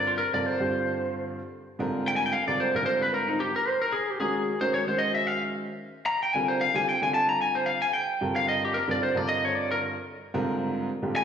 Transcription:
Already playing: grand piano G2 D3 G3 C4 F4 A#4
0.07 lead electric guitar F4
0.18 lead electric guitar A#4
0.33 grand piano G2 D3 G3 C4 F4 A#4, lead electric guitar D5
0.46 lead electric guitar C5
0.60 grand piano G2 D3 G3 C4 F4 G4
1.79 grand piano G#2 D3 G3 C4 F4 A#4
2.08 lead electric guitar G5
2.16 lead electric guitar G#5
2.26 lead electric guitar G5
2.33 lead electric guitar F5
2.47 grand piano G#2 D3 G3 C4 F4 A#4, lead electric guitar D5
2.60 lead electric guitar C5
2.74 grand piano G#2 D3 G3 C4 F4 C5, lead electric guitar A#4
2.86 lead electric guitar C5
3.02 lead electric guitar B4
3.14 lead electric guitar A#4
3.28 lead electric guitar D#4
3.40 lead electric guitar G4
3.56 lead electric guitar A#4
3.68 lead electric guitar C5
3.82 lead electric guitar A#4
3.92 lead electric guitar G#4
4.10 lead electric guitar G4
4.20 grand piano D#3 G#3 C#4 F#4 A#4, lead electric guitar G#4
4.61 grand piano D#3 G#3 C#4 F#4 A#4, lead electric guitar C5
4.74 lead electric guitar C#5
4.87 grand piano D#3 G#3 C#4 F#4 C5, lead electric guitar C5
4.98 lead electric guitar D#5
5.14 lead electric guitar E5
5.27 lead electric guitar F5
6.06 lead electric guitar A#5
6.23 lead electric guitar G5
6.34 grand piano D3 G3 C4 F4 A#4, lead electric guitar G#5
6.48 lead electric guitar C5
6.61 lead electric guitar F5
6.74 grand piano D3 G3 C4 F4 G4, lead electric guitar G#5
6.89 lead electric guitar G5
7.01 grand piano D3 G3 C4 F4 G4, lead electric guitar G#5
7.14 lead electric guitar A5
7.29 lead electric guitar A#5
7.41 lead electric guitar G#5
7.55 lead electric guitar C5
7.66 lead electric guitar F5
7.82 lead electric guitar G#5
7.93 lead electric guitar G5
8.21 grand piano G2 D3 G3 C4 F4 A#4
8.36 lead electric guitar F5
8.48 lead electric guitar D#5
8.65 lead electric guitar G4
8.74 lead electric guitar A#4
8.87 grand piano G2 D3 G3 C4 F4 G4, lead electric guitar D5
9.03 lead electric guitar C5
9.14 grand piano G2 D3 G3 C4 F4 A#4, lead electric guitar D5
9.29 lead electric guitar D#5
9.45 lead electric guitar C#5
9.56 lead electric guitar D5
9.71 lead electric guitar A#4
10.34 grand piano G#2 D3 G3 C4 F4 A#4
11.02 grand piano G#2 D3 G3 C4 F4 G4
11.16 lead electric guitar G#5

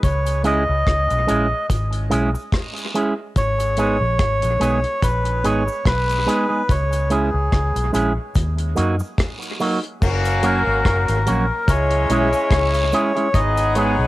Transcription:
0.03 fingered electric bass C#2, melodica C#5, kick, closed hi-hat, cabasa
0.26 closed hi-hat, cabasa
0.43 clean electric guitar G#3 C#4 E4 G#4, melodica D#5, closed hi-hat, cabasa
0.69 fingered electric bass C#2
0.87 fingered electric bass C#2, kick, cross-stick, closed hi-hat
1.10 fingered electric bass B1, closed hi-hat, cabasa
1.27 fingered electric bass A#1, clean electric guitar G#3 C#4 E4 G#4, closed hi-hat, cabasa
1.70 fingered electric bass G#1, kick, closed hi-hat, cabasa
1.93 closed hi-hat
2.10 fingered electric bass B1, clean electric guitar G#3 C#4 E4 G#4, closed hi-hat, cabasa
2.35 muted clean electric guitar stroke, cabasa
2.52 kick, cross-stick, closed hi-hat, long guiro
2.76 closed hi-hat, cabasa
2.94 clean electric guitar G#3 C#4 E4 G#4, closed hi-hat, cabasa
3.36 fingered electric bass G#1, melodica C#5, kick, closed hi-hat, cabasa
3.60 closed hi-hat, cabasa
3.77 clean electric guitar G#3 B3 D#4 G#4, closed hi-hat, cabasa
4.01 fingered electric bass A#1
4.19 fingered electric bass G#1, kick, cross-stick, closed hi-hat
4.42 fingered electric bass A#1, closed hi-hat, cabasa
4.60 fingered electric bass B1, clean electric guitar G#3 B3 D#4 G#4, closed hi-hat, cabasa
4.84 closed hi-hat
5.02 fingered electric bass A#1, melodica B4, kick, closed hi-hat, cabasa
5.25 closed hi-hat
5.44 fingered electric bass G#1, clean electric guitar G#3 B3 D#4 G#4, melodica C#5, closed hi-hat, cabasa
5.67 muted clean electric guitar stroke, cabasa
5.85 fingered electric bass B1, melodica B4, kick, cross-stick, closed hi-hat, long guiro
6.09 closed hi-hat, cabasa
6.27 clean electric guitar G#3 B3 D#4 G#4, closed hi-hat, cabasa
6.49 clean electric guitar G#3 B3 D#4 G#4
6.69 fingered electric bass C#2, melodica C#5, kick, closed hi-hat, cabasa
6.92 closed hi-hat, cabasa
7.10 clean electric guitar G#3 C#4 E4 G#4, melodica G#4, closed hi-hat, cabasa
7.34 fingered electric bass C#2
7.52 fingered electric bass C#2, kick, cross-stick, closed hi-hat
7.76 fingered electric bass B1, closed hi-hat, cabasa
7.93 fingered electric bass A#1, clean electric guitar G#3 C#4 E4 G#4, closed hi-hat, cabasa
8.35 fingered electric bass D#2, kick, closed hi-hat, cabasa
8.58 closed hi-hat
8.75 fingered electric bass F#2, clean electric guitar F#3 A#3 D#4 F#4, closed hi-hat, cabasa
8.99 muted clean electric guitar stroke, cabasa
9.18 kick, cross-stick, closed hi-hat, long guiro
9.42 closed hi-hat, cabasa
9.60 clean electric guitar F#3 A#3 D#4 F#4, open hi-hat, cabasa
9.84 closed hi-hat
10.02 fingered electric bass F#1, horn section A#3 C#4 F#4, kick, crash, cabasa
10.25 closed hi-hat, cabasa
10.43 clean electric guitar F#3 A#3 C#4 F#4, melodica A#4, closed hi-hat, cabasa
10.67 fingered electric bass G#1
10.85 fingered electric bass F#1, melodica A#4, kick, cross-stick, closed hi-hat
11.08 fingered electric bass G#1, closed hi-hat, cabasa
11.26 fingered electric bass A#1, clean electric guitar F#3 A#3 C#4 F#4, closed hi-hat, cabasa
11.67 fingered electric bass C#2, horn section G#3 C#4 E4, melodica C#5, kick, closed hi-hat, cabasa
11.91 closed hi-hat
12.10 fingered electric bass B1, clean electric guitar G#3 C#4 E4 G#4, closed hi-hat, cabasa
12.33 muted clean electric guitar stroke, closed hi-hat, cabasa
12.51 fingered electric bass C#2, kick, cross-stick, closed hi-hat, long guiro
12.74 closed hi-hat, cabasa
12.92 clean electric guitar G#3 C#4 E4 G#4, closed hi-hat, cabasa
13.15 clean electric guitar G#3 C#4 E4 G#4, closed hi-hat
13.34 fingered electric bass G#1, horn section B3 D#4 G#4, melodica D#5, kick, closed hi-hat, cabasa
13.57 closed hi-hat, cabasa
13.75 clean electric guitar G#3 B3 D#4 G#4, melodica C#5, closed hi-hat, cabasa
13.99 fingered electric bass B1

